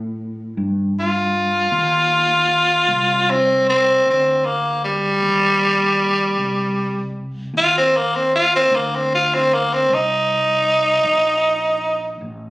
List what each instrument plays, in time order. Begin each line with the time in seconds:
Already playing: fretless electric bass A2
0.57 fretless electric bass G2
0.99 tenor saxophone F4
1.72 fretless electric bass D#2
2.88 fretless electric bass C2
3.31 tenor saxophone C4
3.69 tenor saxophone C4
4.05 fretless electric bass D2
4.10 tenor saxophone C4
4.46 tenor saxophone A#3
4.84 tenor saxophone G3
5.22 fretless electric bass D#2
6.38 fretless electric bass C2
7.54 fretless electric bass D#2, tenor saxophone F4
7.78 tenor saxophone C4
7.97 tenor saxophone A#3
8.16 tenor saxophone C4
8.36 tenor saxophone F4
8.56 tenor saxophone C4
8.71 fretless electric bass D2
8.76 tenor saxophone A#3
8.96 tenor saxophone C4
9.15 tenor saxophone F4
9.34 tenor saxophone C4
9.54 tenor saxophone A#3
9.74 tenor saxophone C4
9.89 fretless electric bass C2
9.94 tenor saxophone D#4
11.04 fretless electric bass A#1
12.21 fretless electric bass A1